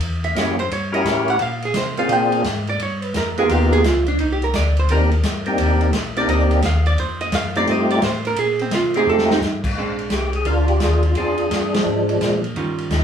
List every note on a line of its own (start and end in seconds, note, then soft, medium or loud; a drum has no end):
0.00 0.35 E2 medium
0.00 ride medium
0.24 0.37 E5 medium
0.24 ride soft
0.35 0.70 F#2 medium
0.35 0.56 A#3 medium
0.35 0.56 C#4 medium
0.35 0.56 E4 medium
0.35 0.57 F#4 medium
0.35 0.57 G4 medium
0.35 0.59 D#5 medium
0.35 snare medium
0.35 hi-hat pedal medium
0.35 ride medium
0.59 0.71 C5 loud
0.59 ride soft
0.70 1.04 G2 medium
0.70 0.94 C#5 medium
0.70 ride medium
0.92 1.37 C#4 medium
0.92 1.38 E4 medium
0.92 1.38 F#4 medium
0.92 1.38 G4 medium
0.92 1.38 A#4 medium
0.92 1.08 D#5 loud
0.92 ride medium
1.05 1.39 A2 medium
1.05 1.29 E5 loud
1.05 snare medium
1.05 hi-hat pedal medium
1.05 ride medium
1.28 1.41 F#5 loud
1.28 ride soft
1.39 1.74 A#2 medium
1.39 1.64 F5 medium
1.39 ride medium
1.62 1.76 G#4 medium
1.62 ride soft
1.74 2.08 C3 medium
1.74 1.98 C5 medium
1.74 snare medium
1.74 hi-hat pedal medium
1.74 ride medium
1.97 2.42 A#3 medium
1.97 2.43 C4 medium
1.97 2.43 D4 medium
1.97 2.43 F4 medium
1.97 2.43 G#4 medium
1.97 2.10 F5 loud
1.97 ride soft
2.09 2.44 A#2 medium
2.09 2.65 G5 loud
2.09 ride medium
2.32 ride medium
2.44 2.79 G#2 loud
2.44 snare medium
2.44 hi-hat pedal soft
2.44 ride medium
2.67 2.80 D5 medium
2.67 ride soft
2.79 3.14 G2 medium
2.79 3.04 C#5 medium
2.79 ride medium
3.02 3.15 B4 medium
3.02 ride soft
3.14 3.49 F2 medium
3.14 3.38 A#4 medium
3.14 snare medium
3.14 hi-hat pedal medium
3.14 ride medium
3.37 3.82 A#3 medium
3.37 3.82 B3 medium
3.37 3.83 D#4 medium
3.37 3.83 F4 medium
3.37 3.83 G4 medium
3.37 3.50 G#4 loud
3.37 ride soft
3.49 3.83 D#2 medium
3.49 3.72 G4 medium
3.49 ride medium
3.73 3.84 G#4 loud
3.73 ride medium
3.84 4.18 C#2 medium
3.84 4.07 F4 medium
3.84 snare medium
3.84 hi-hat pedal medium
3.84 ride medium
4.06 4.19 D4 medium
4.06 ride soft
4.19 4.53 C2 medium
4.19 4.31 D#4 medium
4.19 ride medium
4.32 4.43 G4 medium
4.42 4.55 A#4 medium
4.42 ride soft
4.53 4.88 D2 medium
4.53 4.77 D5 loud
4.53 snare medium
4.53 hi-hat pedal medium
4.53 ride medium
4.77 4.90 C5 medium
4.77 ride soft
4.88 5.23 D#2 medium
4.88 5.10 A#3 medium
4.88 5.10 C4 medium
4.88 5.10 D4 medium
4.88 5.10 D#4 medium
4.88 5.11 G4 medium
4.88 5.44 A#4 medium
4.88 ride medium
5.11 ride soft
5.23 5.57 G2 medium
5.23 snare medium
5.23 hi-hat pedal medium
5.23 ride medium
5.46 5.91 A#3 medium
5.46 5.91 C4 medium
5.46 5.91 D4 medium
5.46 5.91 D#4 medium
5.46 5.91 G4 medium
5.46 ride soft
5.58 5.92 D#2 medium
5.58 ride medium
5.81 ride soft
5.93 6.27 A#1 medium
5.93 snare medium
5.93 hi-hat pedal medium
5.93 ride medium
6.16 6.61 A#3 medium
6.16 6.61 C4 medium
6.16 6.61 D4 medium
6.16 6.61 D#4 medium
6.16 6.61 G4 medium
6.16 6.29 D5 loud
6.16 ride medium
6.28 6.62 D2 medium
6.28 6.40 D#5 loud
6.28 ride medium
6.40 6.54 D5 medium
6.51 6.64 D#5 medium
6.51 ride medium
6.62 6.97 D#2 loud
6.62 6.86 F5 medium
6.62 snare medium
6.62 hi-hat pedal medium
6.62 ride medium
6.86 6.98 D5 medium
6.86 ride soft
6.97 7.31 F2 medium
6.97 7.21 C5 medium
6.97 ride medium
7.21 7.33 D#5 medium
7.21 ride soft
7.32 7.67 F#2 medium
7.32 7.56 F5 loud
7.32 snare medium
7.32 hi-hat pedal medium
7.32 ride medium
7.55 8.00 A3 medium
7.55 8.01 C4 medium
7.55 8.01 D#4 medium
7.55 8.01 F4 medium
7.55 8.01 G4 medium
7.55 7.68 D5 loud
7.55 ride soft
7.67 8.01 G2 medium
7.67 7.91 D#5 loud
7.67 ride medium
7.90 8.03 D5 medium
7.90 ride medium
8.02 8.36 A2 medium
8.02 8.26 C5 medium
8.02 snare medium
8.02 hi-hat pedal medium
8.02 ride medium
8.25 8.38 A#4 loud
8.25 ride soft
8.36 8.71 A#2 medium
8.36 8.60 G#4 medium
8.36 ride medium
8.59 8.73 C4 medium
8.59 ride soft
8.71 9.06 C3 medium
8.71 8.96 F4 medium
8.71 snare medium
8.71 hi-hat pedal medium
8.71 ride medium
8.94 9.40 A3 medium
8.94 9.40 C4 medium
8.94 9.40 D#4 medium
8.94 9.40 F4 medium
8.94 9.40 G4 medium
8.94 9.08 G#4 loud
8.94 ride medium
9.06 9.40 F2 medium
9.06 9.30 A4 loud
9.18 snare medium
9.30 9.38 D#4 medium
9.30 snare medium
9.41 9.75 G2 medium
9.41 snare medium
9.41 hi-hat pedal soft
9.64 kick medium
9.64 crash medium
9.76 10.10 A#1 medium
9.76 10.75 G#3 medium
9.76 10.75 C4 medium
9.76 10.75 D4 medium
9.99 ride soft
10.10 10.45 C2 medium
10.10 10.33 G4 medium
10.10 snare medium
10.10 hi-hat pedal medium
10.10 ride medium
10.33 10.46 G#4 medium
10.33 ride soft
10.45 10.80 D2 medium
10.45 11.12 D4 medium
10.45 11.04 F4 medium
10.45 10.56 A#4 medium
10.45 ride medium
10.68 10.80 G4 medium
10.68 ride soft
10.80 11.15 D#2 medium
10.80 11.03 G#4 medium
10.80 snare medium
10.80 hi-hat pedal medium
10.80 ride medium
11.03 11.16 F4 medium
11.03 ride soft
11.15 11.50 F2 medium
11.15 12.14 C4 medium
11.15 12.14 D4 medium
11.15 11.74 D4 medium
11.15 11.50 F4 medium
11.15 11.83 G#4 medium
11.15 ride medium
11.38 ride soft
11.50 11.84 G2 medium
11.50 11.62 F4 medium
11.50 snare medium
11.50 hi-hat pedal medium
11.50 ride medium
11.74 12.40 F3 medium
11.74 12.40 G#3 medium
11.74 12.40 D4 medium
11.74 snare medium
11.74 ride medium
11.85 12.19 G#2 medium
12.09 ride soft
12.20 12.54 A#2 medium
12.20 snare medium
12.20 hi-hat pedal medium
12.20 ride medium
12.44 ride soft
12.55 12.89 G2 medium
12.55 13.04 D#3 medium
12.55 13.04 G3 medium
12.55 13.04 C#4 medium
12.55 13.04 F4 medium
12.55 ride medium
12.78 ride soft
12.89 13.04 D#2 medium
12.89 13.04 D#4 medium
12.89 snare medium
12.89 hi-hat pedal medium
12.89 ride medium